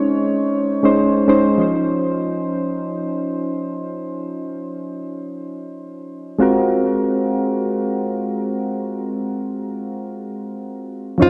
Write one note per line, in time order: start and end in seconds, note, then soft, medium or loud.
0.00 0.83 G#3 medium
0.00 0.96 C4 medium
0.00 0.84 C#4 medium
0.00 0.85 D#4 medium
0.00 0.85 C5 medium
0.00 0.82 C#5 medium
0.83 1.25 G#3 medium
0.83 1.25 C#4 medium
0.83 1.26 D#4 medium
0.83 1.26 C5 medium
1.28 1.55 G#3 medium
1.28 1.55 C#4 medium
1.28 1.56 D#4 medium
1.28 1.56 C5 loud
1.58 6.35 F3 medium
1.58 6.36 C#4 medium
1.58 6.36 D#4 medium
1.58 6.37 C5 medium
6.38 11.16 G#3 medium
6.38 11.16 C4 medium
6.38 11.17 F4 medium
6.38 11.17 F#4 medium
6.38 11.18 A#4 medium
11.18 11.30 F3 medium
11.18 11.30 C#4 medium
11.18 11.30 D#4 medium
11.18 11.30 C5 loud
11.22 11.30 F4 medium